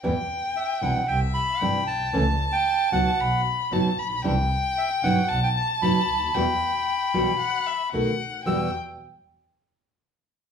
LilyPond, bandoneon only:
\new Staff \with { instrumentName = "Bandoneon" } { \time 4/4 \key e \minor \tempo 4 = 114 r4 e''8 fis''8 g''8 b''4 a''8~ | a''8. g''8. fis''4 r4. | r4 e''8 fis''8. g''16 a''8 b''4~ | b''2. r4 |
e'''8 r2. r8 | }